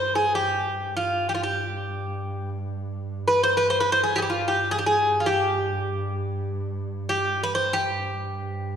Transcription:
Already playing: G2 C5
0.15 G#4
0.35 G2 G4
0.97 F4
1.29 G4
1.35 F4
1.43 G4
3.28 B4
3.43 C5
3.57 B4
3.70 C5
3.80 B4
3.92 C5
4.04 G#4
4.12 G2 G4
4.18 G#4
4.22 G4
4.30 F4
4.48 G4
4.71 G#4
4.79 G4
4.86 G#4
5.20 F4
5.26 G4
7.09 G4
7.43 B4
7.55 C5
7.73 G4
7.86 G2

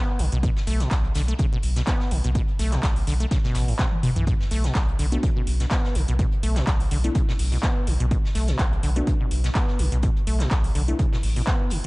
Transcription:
Already playing: B3
0.19 B1 D3, closed hi-hat, open hi-hat
0.32 B1 B2, closed hi-hat
0.43 B2, kick, closed hi-hat
0.56 snare
0.67 B1 A3, snare, closed hi-hat, open hi-hat
0.80 B2, snare, closed hi-hat
0.91 B1, kick, snare, clap, closed hi-hat
1.04 closed hi-hat
1.15 B1 D3, snare, closed hi-hat, open hi-hat
1.28 A3, closed hi-hat
1.39 C#3, kick, closed hi-hat
1.52 B2
1.62 B1, closed hi-hat, open hi-hat
1.76 B2, snare, closed hi-hat
1.87 B3, kick, snare, clap, closed hi-hat
2.00 snare
2.11 B1 D3, closed hi-hat, open hi-hat
2.24 B1 B2, closed hi-hat
2.35 B2, kick, closed hi-hat
2.48 closed hi-hat
2.59 B1 A3, snare, closed hi-hat, open hi-hat
2.72 B2, snare, clap, closed hi-hat
2.83 B1, kick, snare, clap, closed hi-hat
2.96 closed hi-hat, open hi-hat
3.07 B1 D3, closed hi-hat, open hi-hat
3.20 A3, closed hi-hat
3.31 C#3, kick, snare, closed hi-hat
3.44 B2, snare
3.54 A1, snare, closed hi-hat, open hi-hat
3.68 A2, open hi-hat
3.79 B2, kick, snare, clap, closed hi-hat
3.92 high tom
4.03 F#1 B2, closed hi-hat, open hi-hat, mid tom
4.16 B1 E3, closed hi-hat, mid tom
4.27 B2, kick, closed hi-hat
4.40 snare
4.51 B1 A3, snare, closed hi-hat, open hi-hat
4.64 B2, snare, closed hi-hat
4.75 B1, kick, snare, clap, closed hi-hat
4.88 closed hi-hat
4.99 B1 D3, closed hi-hat, open hi-hat
5.12 A3 B3 D4 F#4, closed hi-hat
5.23 C#3, kick, closed hi-hat
5.36 B2
5.47 B1, closed hi-hat, open hi-hat
5.60 B2, snare, closed hi-hat
5.70 B3, kick, snare, clap, closed hi-hat
5.84 snare
5.95 B1 D3, closed hi-hat, open hi-hat
6.08 B1 B2, closed hi-hat
6.19 B2, kick, closed hi-hat
6.32 closed hi-hat
6.43 B1 A3, closed hi-hat, open hi-hat
6.56 B2, snare, clap, closed hi-hat
6.67 B1, kick, snare, clap, closed hi-hat
6.80 closed hi-hat, open hi-hat
6.91 B1 D3, closed hi-hat, open hi-hat
7.04 A3 B3 D4 E4, closed hi-hat
7.15 C#3, kick, closed hi-hat
7.28 B2, snare
7.39 B1, open hi-hat
7.52 B2, open hi-hat
7.63 B3, kick, snare, clap, closed hi-hat
7.87 B1 D3, closed hi-hat, open hi-hat
8.00 B1 B2, closed hi-hat
8.11 B2, kick, closed hi-hat
8.25 snare
8.35 B1 A3, snare, closed hi-hat, open hi-hat
8.47 B2, snare, closed hi-hat
8.59 B1, kick, snare, clap, closed hi-hat
8.73 closed hi-hat
8.83 B1 D3, closed hi-hat, open hi-hat
8.96 A3 B3 D4 F#4, closed hi-hat
9.07 C#3, kick, closed hi-hat
9.20 B2
9.31 B1, closed hi-hat, open hi-hat
9.44 B2, snare, closed hi-hat
9.55 B3, kick, snare, clap, closed hi-hat
9.68 snare
9.79 B1 D3, closed hi-hat, open hi-hat
9.92 B1 B2, closed hi-hat
10.03 B2, kick, closed hi-hat
10.17 closed hi-hat
10.27 B1 A3, closed hi-hat, open hi-hat
10.40 B2, snare, clap, closed hi-hat
10.51 B1, kick, snare, clap, closed hi-hat
10.64 closed hi-hat, open hi-hat
10.75 B1 D3, closed hi-hat, open hi-hat
10.88 A3 B3 D4 E4, closed hi-hat
10.99 C#3, kick, closed hi-hat
11.12 B2, snare
11.23 A1, open hi-hat
11.36 B2, open hi-hat
11.47 B3, kick, snare, clap, closed hi-hat
11.70 F#1 D3, closed hi-hat, open hi-hat

